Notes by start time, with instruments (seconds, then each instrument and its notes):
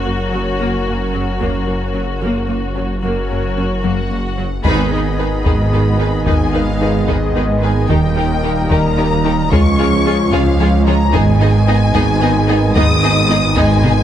Already playing: detuned saw bass F#1, analog synth pad F#3 C#4 A#4 C#5, viola section F#4
0.05 cello section F#2, viola section A#3, synth arpeggio sound F#4
0.31 cello section F#2, viola section F#3, synth arpeggio sound C#4
0.59 cello section F#2, synth arpeggio sound F#3, viola section A#3
0.87 cello section F#2, synth arpeggio sound A#3, viola section A#3
1.14 cello section F#2, viola section F#3, synth arpeggio sound C#4
1.40 cello section F#2, synth arpeggio sound F#3, viola section A#3, taiko
1.67 cello section F#2, viola section A#3, synth arpeggio sound F#4
1.94 cello section F#2, viola section F#3, synth arpeggio sound C#4
2.22 cello section F#2, synth arpeggio sound F#3, viola section A#3
2.49 cello section F#2, viola section A#3, synth arpeggio sound A#3
2.76 cello section F#2, viola section F#3, synth arpeggio sound C#4
3.03 detuned saw bass F#1, cello section F#2, synth arpeggio sound F#3, analog synth pad F#3 C#4 A#4 C#5, viola section A#3 F#4
3.30 cello section F#2, viola section A#3, synth arpeggio sound F#4
3.57 cello section F#2, viola section F#3, synth arpeggio sound C#4
3.83 cello section F#2, synth arpeggio sound F#3, viola section A#3, violin section F#5
4.11 cello section F#2, synth arpeggio sound A#3, viola section A#3
4.38 cello section F#2, viola section F#3, synth arpeggio sound C#4
4.63 detuned saw bass G#1, double bass section G#1, cello section G#2, trombone section D#3 G#3, viola section D#3 D#4, analog synth pad D#3 B3 G#4 D#5, synth arpeggio sound G#3, french horn section B3 D#4, violin section G#4 B4 B5, taiko
4.92 viola section D#3 D#4, synth arpeggio sound D#4, violin section G#4 B4
5.19 viola section D#3 D#4, synth arpeggio sound D#4, violin section G#4 B4
5.45 double bass section G#1, cello section G#2, viola section D#3 D#4, synth arpeggio sound G#3, violin section G#4 B4, taiko
5.73 viola section D#3 D#4, synth arpeggio sound B3, violin section G#4 B4
6.00 viola section D#3 D#4, synth arpeggio sound B3, violin section G#4 B4
6.26 double bass section G#1, cello section G#2, viola section D#3 D#4, synth arpeggio sound G#3, violin section G#4 B4 G#5, taiko
6.53 viola section D#3 D#4, synth arpeggio sound D#4, violin section G#4 B4 F5
6.80 viola section D#3 D#4, synth arpeggio sound D#4, violin section G#4 B4
7.07 double bass section G#1, cello section G#2, viola section D#3 D#4, synth arpeggio sound G#3, violin section G#4 B4 D#5, taiko
7.35 viola section D#3 D#4, synth arpeggio sound B3, violin section G#4 B4
7.61 viola section D#3 D#4, synth arpeggio sound B3, violin section G#4 B4 G#5
7.89 detuned saw bass D#1, double bass section D#2, cello section D#2, viola section D#3 D#4, trombone section D#3 G3, synth arpeggio sound D#3, analog synth pad A#3 A#4, french horn section A#3 D#4, violin section G4 A#4 G5, taiko
8.16 viola section D#3 D#4, synth arpeggio sound A#3, violin section G4 A#4
8.44 viola section D#3 D#4, synth arpeggio sound A#3, violin section G4 A#4
8.70 double bass section D#2, cello section D#2, viola section D#3 D#4, synth arpeggio sound D#3, violin section G4 A#4 A#5, taiko
8.97 viola section D#3 D#4, synth arpeggio sound G3, violin section G4 A#4
9.24 viola section D#3 D#4, synth arpeggio sound G3, violin section G4 A#4
9.51 double bass section C#2, cello section C#2, detuned saw bass C#2, synth arpeggio sound C#3, trombone section C#3 G#3, analog synth pad F3 C#4 G#4 C#5, viola section G#3 F4, french horn section C#4 F4, violin section G#4 C#5 C#6, taiko
9.78 synth arpeggio sound G#3, viola section G#3 F4, violin section G#4 C#5
10.06 synth arpeggio sound G#3, viola section G#3 F4, violin section G#4 C#5
10.32 cello section C#2, double bass section C#2, synth arpeggio sound C#3, viola section G#3 F4, violin section G#4 C#5 F5, taiko
10.60 synth arpeggio sound F3, viola section G#3 F4, violin section G#4 C#5
10.86 synth arpeggio sound F3, viola section G#3 F4, violin section G#4 C#5 A#5
11.13 detuned saw bass G#1, double bass section G#1, cello section G#2, analog synth pad D#3 B3 D#5, trombone section D#3 G#3, synth arpeggio sound G#3, viola section B3 D#4, french horn section B3 D#4, violin section G#4 D#5 G#5, taiko
11.40 viola section B3 D#4, synth arpeggio sound D#4, violin section G#4 D#5
11.68 viola section B3 D#4, synth arpeggio sound D#4, violin section G#4 D#5
11.94 double bass section G#1, cello section G#2, synth arpeggio sound G#3, viola section B3 D#4, violin section G#4 D#5, taiko
12.21 synth arpeggio sound B3, viola section B3 D#4, violin section G#4 D#5
12.48 synth arpeggio sound B3, viola section B3 D#4, violin section G#4 D#5
12.75 double bass section G#1, cello section G#2, synth arpeggio sound G#3, viola section B3 D#4, violin section G#4 D#5 D#6, taiko
13.02 viola section B3 D#4, synth arpeggio sound D#4, violin section G#4 D#5
13.29 viola section B3 D#4, synth arpeggio sound D#4, violin section G#4 D#5
13.56 double bass section G#1, cello section G#2, synth arpeggio sound G#3, viola section B3 D#4, violin section G#4 D#5 G#5, taiko
13.84 viola section B3 D#4, synth arpeggio sound B3, violin section G#4 D#5, taiko low-mid